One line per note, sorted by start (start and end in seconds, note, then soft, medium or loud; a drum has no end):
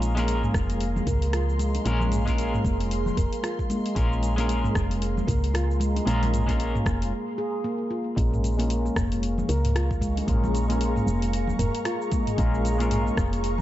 0.00 0.47 A#1 loud
0.00 0.13 G#3 medium
0.00 0.15 A#3 medium
0.00 0.13 C#4 medium
0.00 0.13 F4 medium
0.00 7.08 G#4 medium
0.00 0.14 A#4 medium
0.00 7.08 F5 medium
0.00 7.08 A#5 medium
0.00 7.11 C6 medium
0.00 open hi-hat soft
0.00 shaker medium
0.15 1.82 G#3 medium
0.15 0.42 A#3 loud
0.15 1.83 C#4 medium
0.15 1.83 F4 medium
0.15 open hi-hat soft
0.15 high bongo soft
0.15 shaker soft
0.19 1.84 A#4 loud
0.28 open hi-hat medium
0.28 shaker soft
0.43 0.54 A#3 medium
0.43 mid tom medium
0.43 shaker soft
0.54 1.00 F1 medium
0.54 kick loud
0.54 cross-stick medium
0.54 high conga soft
0.54 shaker medium
0.69 0.80 A#3 medium
0.69 open hi-hat soft
0.69 shaker soft
0.81 open hi-hat soft
0.81 shaker soft
0.96 low conga loud
0.96 shaker soft
1.07 1.79 C#2 medium
1.07 1.21 A#4 medium
1.07 kick loud
1.07 mid tom medium
1.07 open hi-hat soft
1.07 shaker medium
1.22 open hi-hat soft
1.22 shaker soft
1.33 1.42 F4 medium
1.33 cross-stick medium
1.33 open hi-hat soft
1.33 shaker soft
1.49 shaker soft
1.59 1.85 G#3 medium
1.59 open hi-hat soft
1.59 shaker medium
1.75 open hi-hat soft
1.75 high bongo soft
1.75 shaker soft
1.85 2.58 A#1 medium
1.85 2.24 G#3 medium
1.85 2.26 A#3 medium
1.85 2.24 C#4 medium
1.85 2.24 F4 medium
1.85 2.25 A#4 medium
1.85 open hi-hat medium
1.85 shaker soft
2.00 low conga medium
2.00 shaker soft
2.12 mid tom medium
2.12 open hi-hat soft
2.12 shaker medium
2.26 3.93 G#3 medium
2.26 2.52 A#3 loud
2.26 3.93 C#4 medium
2.26 3.94 F4 medium
2.26 kick medium
2.26 open hi-hat soft
2.26 high bongo soft
2.26 shaker soft
2.30 3.95 A#4 loud
2.38 open hi-hat medium
2.38 shaker soft
2.53 2.64 A#3 medium
2.53 mid tom medium
2.53 shaker soft
2.64 3.10 F1 loud
2.64 kick loud
2.64 high conga soft
2.64 shaker medium
2.80 2.90 A#3 medium
2.80 open hi-hat soft
2.80 shaker soft
2.91 open hi-hat medium
2.91 shaker soft
3.06 low conga medium
3.06 shaker soft
3.17 3.27 F1 loud
3.17 3.32 A#4 medium
3.17 kick medium
3.17 open hi-hat medium
3.17 shaker medium
3.33 open hi-hat soft
3.33 shaker soft
3.43 3.52 F4 medium
3.43 cross-stick medium
3.43 open hi-hat soft
3.43 shaker soft
3.59 kick medium
3.59 shaker soft
3.70 3.95 G#3 loud
3.70 open hi-hat soft
3.70 high bongo soft
3.70 high conga medium
3.70 shaker medium
3.86 open hi-hat soft
3.86 shaker soft
3.95 4.68 A#1 loud
3.95 4.34 G#3 medium
3.95 4.37 A#3 medium
3.95 4.34 C#4 medium
3.95 4.34 F4 medium
3.95 4.35 A#4 loud
3.95 kick loud
3.95 open hi-hat medium
3.95 shaker soft
4.13 shaker soft
4.23 open hi-hat soft
4.23 shaker medium
4.36 6.03 G#3 medium
4.36 4.63 A#3 medium
4.36 6.04 C#4 medium
4.36 6.05 F4 medium
4.36 open hi-hat soft
4.36 high bongo soft
4.36 shaker soft
4.40 6.05 A#4 loud
4.49 open hi-hat medium
4.49 shaker soft
4.64 4.75 A#3 medium
4.64 mid tom medium
4.64 shaker soft
4.75 5.21 F1 loud
4.75 kick loud
4.75 cross-stick medium
4.75 high conga soft
4.75 shaker medium
4.90 5.01 A#3 medium
4.90 open hi-hat soft
4.90 shaker soft
5.02 open hi-hat medium
5.02 shaker soft
5.17 low conga medium
5.17 shaker soft
5.27 6.00 C#2 medium
5.27 5.42 A#4 medium
5.27 kick loud
5.27 mid tom medium
5.27 open hi-hat soft
5.27 shaker medium
5.44 open hi-hat soft
5.44 shaker soft
5.54 5.63 F4 medium
5.54 cross-stick medium
5.54 open hi-hat medium
5.54 shaker soft
5.71 shaker soft
5.80 6.05 G#3 loud
5.80 open hi-hat soft
5.80 shaker medium
5.96 open hi-hat soft
5.96 high bongo medium
5.96 shaker soft
6.06 6.79 A#1 loud
6.06 6.44 G#3 medium
6.06 6.47 A#3 medium
6.06 6.45 C#4 medium
6.06 6.45 F4 medium
6.06 6.45 A#4 loud
6.06 open hi-hat medium
6.06 shaker soft
6.23 open hi-hat soft
6.23 low conga medium
6.23 shaker soft
6.34 mid tom medium
6.34 open hi-hat soft
6.34 shaker medium
6.47 7.11 G#3 medium
6.47 6.73 A#3 loud
6.47 7.12 C#4 medium
6.47 7.12 F4 medium
6.47 kick medium
6.47 open hi-hat soft
6.47 high bongo soft
6.47 shaker soft
6.51 7.13 A#4 loud
6.60 open hi-hat medium
6.60 shaker soft
6.75 6.85 A#3 medium
6.75 mid tom medium
6.75 shaker soft
6.84 7.12 F1 medium
6.84 kick loud
6.84 cross-stick medium
6.84 high conga soft
6.84 shaker medium
7.01 7.12 A#3 medium
7.01 open hi-hat soft
7.01 shaker soft
7.38 7.47 G#4 medium
7.64 7.79 A#3 medium
7.91 8.06 F4 medium
8.16 8.89 A#1 medium
8.16 8.55 G#3 medium
8.16 8.57 A#3 medium
8.16 8.55 C#4 medium
8.16 8.56 F4 medium
8.16 13.62 G#4 medium
8.16 8.56 A#4 medium
8.16 13.62 F5 medium
8.16 13.62 A#5 medium
8.16 13.62 C#6 medium
8.16 kick loud
8.16 open hi-hat medium
8.16 shaker soft
8.33 mid tom medium
8.33 shaker soft
8.44 open hi-hat soft
8.44 shaker medium
8.57 10.24 G#3 medium
8.57 8.84 A#3 loud
8.57 10.25 C#4 medium
8.57 10.26 F4 medium
8.57 open hi-hat soft
8.57 high bongo soft
8.57 shaker soft
8.61 10.26 A#4 loud
8.70 open hi-hat medium
8.70 shaker soft
8.85 8.96 A#3 medium
8.85 shaker soft
8.96 9.42 F1 medium
8.96 kick loud
8.96 cross-stick medium
8.96 mid tom medium
8.96 high conga soft
8.96 shaker medium
9.12 9.22 A#3 medium
9.12 open hi-hat soft
9.12 shaker soft
9.23 open hi-hat medium
9.23 shaker soft
9.38 low conga medium
9.38 shaker soft
9.49 10.21 C#2 medium
9.49 9.64 A#4 medium
9.49 open hi-hat soft
9.49 shaker medium
9.65 mid tom medium
9.65 open hi-hat soft
9.65 shaker soft
9.75 9.84 F4 medium
9.75 cross-stick medium
9.75 open hi-hat medium
9.75 shaker soft
9.91 kick loud
9.91 shaker soft
10.01 10.27 G#3 loud
10.01 kick medium
10.01 open hi-hat soft
10.01 shaker medium
10.17 open hi-hat soft
10.17 high bongo medium
10.17 shaker soft
10.27 11.00 A#1 medium
10.27 10.66 G#3 medium
10.27 10.68 A#3 medium
10.27 10.66 C#4 medium
10.27 10.66 F4 medium
10.27 10.67 A#4 loud
10.27 kick loud
10.27 mid tom medium
10.27 open hi-hat soft
10.27 shaker soft
10.44 low conga loud
10.44 shaker soft
10.55 open hi-hat soft
10.55 shaker medium
10.68 12.35 G#3 medium
10.68 10.94 A#3 loud
10.68 12.36 C#4 medium
10.68 12.36 F4 medium
10.68 12.37 A#4 loud
10.68 open hi-hat soft
10.68 high bongo soft
10.68 shaker soft
10.81 open hi-hat medium
10.81 shaker soft
10.96 11.06 A#3 medium
10.96 mid tom medium
10.96 shaker soft
11.06 11.52 F1 medium
11.06 high conga soft
11.06 shaker medium
11.22 11.32 A#3 medium
11.22 open hi-hat soft
11.22 shaker soft
11.33 open hi-hat medium
11.33 shaker soft
11.48 low conga medium
11.48 shaker soft
11.59 11.69 F1 loud
11.59 11.74 A#4 medium
11.59 mid tom medium
11.59 open hi-hat soft
11.59 shaker medium
11.75 open hi-hat soft
11.75 shaker soft
11.85 11.95 F4 medium
11.85 cross-stick medium
11.85 open hi-hat soft
11.85 shaker soft
12.02 shaker soft
12.12 12.37 G#3 loud
12.12 kick loud
12.12 open hi-hat soft
12.12 high bongo medium
12.12 high conga medium
12.12 shaker medium
12.27 mid tom medium
12.27 open hi-hat soft
12.27 shaker soft
12.37 13.10 A#1 loud
12.37 12.76 G#3 medium
12.37 12.79 A#3 medium
12.37 12.76 C#4 medium
12.37 12.77 F4 medium
12.37 12.77 A#4 loud
12.37 kick loud
12.37 open hi-hat medium
12.37 shaker soft
12.55 shaker soft
12.65 open hi-hat soft
12.65 shaker medium
12.78 13.62 G#3 medium
12.78 13.05 A#3 loud
12.78 13.62 C#4 medium
12.78 13.62 F4 medium
12.78 open hi-hat soft
12.78 high bongo soft
12.78 shaker soft
12.82 13.62 A#4 loud
12.91 mid tom medium
12.91 open hi-hat medium
12.91 shaker soft
13.06 13.17 A#3 medium
13.06 shaker soft
13.17 13.62 F1 medium
13.17 kick loud
13.17 cross-stick medium
13.17 high conga soft
13.17 shaker medium
13.32 13.43 A#3 medium
13.32 open hi-hat soft
13.32 shaker soft
13.44 open hi-hat soft
13.44 shaker soft
13.58 low conga medium